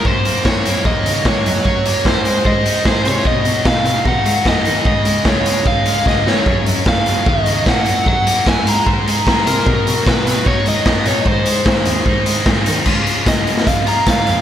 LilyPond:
<<
  \new Staff \with { instrumentName = "Overdriven electric guitar" } { \time 4/4 \key des \major \tempo 4 = 150 c''4 des''4 ees''4 des''4 | des''4 c''4 ees''4 c''8 des''8 | ees''4 f''4 ges''4 ees''4 | ees''4 des''4 f''4 ees''8 des''8~ |
des''8 r8 f''4 ees''4 ges''4 | ges''4 aes''8 bes''2 bes'8~ | bes'4 ces''4 des''8 ees''8 ees''8 des''8 | c''2. r4 |
r4 ees''4 f''8 bes''8 f''4 | }
  \new Staff \with { instrumentName = "Distorted electric guitar" } { \clef bass \time 4/4 \key des \major ges,8 bes8 ges8 bes8 ees8 ges8 bes8 ges8 | ges8 bes8 ges8 aes8 c''8 ees'8 aes'8 c''8 | ces8 ges8 ees8 ges8 ees'8 ges8 ces'8 ees'8 | des8 aes8 des8 aes8 ees'8 aes8 des'8 ees'8 |
ges,8 ges8 des8 ges8 ees8 ges8 bes8 ges8 | ges8 bes8 ges8 aes8 c''8 ees'8 aes'8 c''8 | ces8 ges8 ees8 ges8 ees'8 ges8 ces'8 ees'8 | aes,8 aes8 ees8 aes8 ees'8 aes8 c'8 ees'8 |
<des f aes des' f'>2~ <des f aes des' f'>8 <des f aes des' f'>8 <des f aes des' f'>4 | }
  \new Staff \with { instrumentName = "Cello" } { \clef bass \time 4/4 \key des \major ges,8 ges,8 ges,8 ges,8 ees,8 des8 aes,8 ges,8 | ges,8 ges,8 ges,8 aes,8 aes,8 aes,8 aes,8 c8 | ces8 ces8 ces8 ces8 ces8 aes8 ges,8 ees8 | des,8 des,8 des,8 aes,8 des,8 des,8 des,8 aes,8 |
ges,8 ges,8 ges,8 ges,8 ees,8 des8 bes,8 ges,8 | ges,8 ges,8 ges,8 aes,8 aes,8 aes,8 aes,8 c8 | ces8 ces8 ces8 ces8 ces8 aes8 ges,8 bes,8 | aes,8 aes,8 aes,8 ees,8 aes,8 aes,8 aes,8 ees8 |
des,8 aes,8 des,8 aes,8 f,4 des,8 f,8 | }
  \new DrumStaff \with { instrumentName = "Drums" } \drummode { \time 4/4 bd8 hh8 <bd sn>8 hh8 bd8 hh8 <bd sn>8 hh16 sn16 | bd8 hh8 <bd sn>8 hh8 bd8 hh8 <bd sn>8 hh16 sn16 | bd8 hh8 <bd sn>8 hh8 bd8 hh8 <bd sn>8 hh16 sn16 | bd8 hh8 <bd sn>8 hh8 bd8 hh8 <bd sn>8 sn8 |
bd8 hh8 <bd sn>8 hh8 bd8 hh8 <bd sn>8 hh8 | bd8 hh8 <bd sn>8 hh8 bd8 hh8 <bd sn>8 hh16 sn16 | bd8 hh8 <bd sn>8 hh8 bd8 hh8 <bd sn>8 hh8 | bd8 hh8 <bd sn>8 hh8 bd8 hh8 <bd sn>8 hh8 |
<cymc bd>8 hh8 <hh bd sn>8 hh16 sn16 <hh bd>8 hh8 <hh bd sn>8 hh8 | }
>>